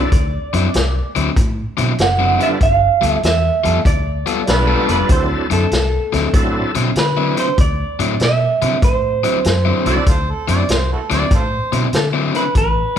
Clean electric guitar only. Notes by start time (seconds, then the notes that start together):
Already playing: D5
2.02 F#5
2.43 E5
2.63 F5
3.08 E5
3.25 E5
3.87 D5
4.49 B4
4.92 B4
5.12 C5
5.53 A4
6.99 B4
7.40 C5
7.61 D5
8.24 E5
8.84 C5
10.83 B4
11.96 A4
12.36 B4
12.58 B4